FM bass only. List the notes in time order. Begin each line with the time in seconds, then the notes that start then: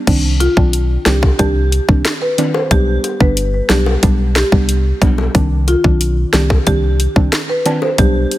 0.07 C2
0.57 B1
1.06 C2
1.39 C2
1.89 C2
2.71 B1
3.21 G1
3.70 B1
4.03 B1
4.52 C2
5.02 B1
5.35 C2
5.84 B1
6.34 C2
6.67 C2
7.16 C2
7.99 B1